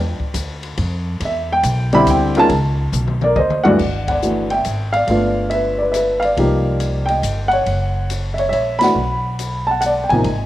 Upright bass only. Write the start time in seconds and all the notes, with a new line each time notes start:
Already playing: E2
0.19 muted upright bass stroke
0.34 D2
0.78 F2
1.20 E2
1.63 B1
2.07 D2
2.49 C#2
2.92 B1
3.36 D2
3.79 G1
4.65 G#1
5.07 G1
6.37 C2
7.22 G1
7.66 F#1
8.52 A#1
8.95 B1
10.11 A1
10.24 G#1